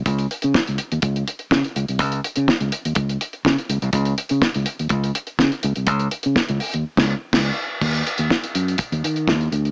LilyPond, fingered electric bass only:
\new Staff \with { instrumentName = "Fingered electric bass" } { \clef bass \time 4/4 \key ees \dorian \tempo 4 = 124 des,8 r16 des16 r16 des,16 r16 ees,16 des,8 r8 des16 r16 des,16 c,16 | des,8 r16 des16 r16 des,16 r16 ees,16 des,8 r8 des16 r16 des,16 c,16 | des,8 r16 des16 r16 des,16 r16 ees,16 des,8 r8 des16 r16 des,16 c,16 | des,8 r16 des16 r16 des,16 r16 ees,16 r16 des,8 r16 des,8 r8 |
ees,8 r16 ees,16 r8 ges,8 r16 ees,16 ees8 ees,8 d,8 | }